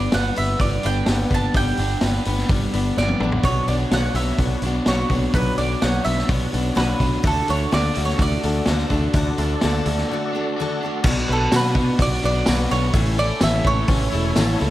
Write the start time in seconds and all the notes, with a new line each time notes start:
Already playing: G3 B3 D4 B4 D5
0.12 G1 G3 B3 D4 B4 F#5, snare, open hi-hat
0.36 G1 B3 D4 B4 E5, open hi-hat
0.60 G1 G3 B3 D4 B4 D5, kick, open hi-hat
0.83 G1 B3 D4 B4 G5, open hi-hat
1.06 G1 G3 B3 D4 B4, snare, open hi-hat
1.30 G1 B3 D4 B4 A5, kick, open hi-hat
1.54 G1 G3 B3 D4 B4 G5, kick, open hi-hat
1.77 G1 B3 D4 B4, open hi-hat
2.01 G1 G3 B3 D4 B4, snare, open hi-hat
2.25 G1 B3 D4 B4, open hi-hat
2.38 snare
2.49 G1 G3 B3 D4 B4, kick, open hi-hat
2.73 G1 B3 D4 B4, open hi-hat
2.97 G1 G3 B3 D4 B4 D5, snare
3.09 high tom
3.20 A1 B3 D4 B4, mid tom
3.32 floor tom
3.42 B1 B2 F#3 D4 F#4 B4 C#5, kick, open hi-hat
3.46 B3 D4 F#4 C#5
3.68 B1 D4 F#4 C#5 D5, open hi-hat
3.72 B3
3.91 B1 B2 F#3 B3 D4 F#4 C#5 F#5, snare, open hi-hat
4.14 B1 F#4 C#5 E5, open hi-hat
4.20 B3 D4
4.38 B1 B3 D4 F#4, kick, open hi-hat
4.43 C#5
4.62 B1 F#4 C#5, open hi-hat
4.66 B3 D4
4.86 B1 B2 F#3 B3 D4 F#4 C#5, snare, open hi-hat
5.09 B1 F#4 C#5, kick, open hi-hat
5.14 B3 D4
5.34 B1 B2 F#3 B3 D4 F#4 B4 C#5, kick, open hi-hat
5.58 B1 D4 F#4 C#5 D5, open hi-hat
5.62 B3
5.82 B1 B2 F#3 B3 D4 F#4 C#5 F#5, snare, open hi-hat
6.05 B1 B3 D4 F#4 C#5 E5, open hi-hat
6.18 snare
6.29 B1 B3 D4 F#4 C#5, kick, open hi-hat
6.52 B1 B3 D4 F#4 C#5, open hi-hat
6.75 B1 B2 F#3 B3 D4 F#4 B4 C#5, snare, open hi-hat
6.99 B1 B3 D4 F#4 C#5, kick, open hi-hat
7.22 D2 D3 D4 F#4 A4 D5, kick, open hi-hat
7.27 A4
7.47 D2 D4 F#4 A4 C#5, open hi-hat
7.71 D2 D3 D4 F#4 A4 D5, snare, open hi-hat
7.95 D2 D4 F#4 A4, open hi-hat
8.05 C#5, snare
8.19 D2 D3 A3 D4 F#4 D5, kick, open hi-hat
8.23 A4
8.43 D2 D4 F#4 A4, open hi-hat
8.48 D4
8.66 D2 D3 D4 F#4 A4, snare, open hi-hat
8.78 snare
8.90 D2 D4 F#4 A4, kick, open hi-hat
9.13 D2 D3 D4 F#4 A4, kick, open hi-hat
9.37 D2 D4 F#4 A4, open hi-hat
9.41 D4
9.61 D2 D3 D4 F#4 A4 D5, snare, open hi-hat
9.85 D2 F#4 A4, open hi-hat
9.90 D4 F#4
9.97 snare
10.08 D3 A3 D4
10.13 F#4 A4
10.35 D4 F#4 A4
10.56 D3 D4 F#4
10.61 F#4 A4
10.80 D4 A4
10.84 D4 F#4
11.02 B1 B2 F#3 D4 F#4 B4 D5, kick, crash
11.07 B3 D4 F#4
11.28 B1 B3 D4 F#4 B4
11.32 A4
11.52 B2 F#3 B3 D4 F#4, snare, open hi-hat, tambourine
11.56 B4
11.75 B3 D4 F#4, kick
11.99 B1 F#3 B3 D4 F#4 D5, kick, open hi-hat
12.24 B1 B3 D4 F#4 D5
12.46 B1 B2 F#3 B3 D4 F#4 B4, snare, open hi-hat, tambourine
12.70 B1 B3 D4 F#4 C#5, snare
12.91 A1 A2 E3 A3 C#4 E4 A4 C#5, kick, open hi-hat
12.95 C#4 E4
13.17 A3 C#4 E4 A4 D5
13.41 A1 A2 E3 A3 C#4 E4 E5, snare, open hi-hat, tambourine
13.64 A1 E3 A3 C#4 E4 C#5, kick
13.88 A1 E3 A3 C#4 E4, kick, open hi-hat
14.12 E1 A3 C#4 E4
14.36 A1 A2 E3 A3 C#4 E4 A4, snare, open hi-hat, tambourine
14.59 C#2 A3 C#4 E4, snare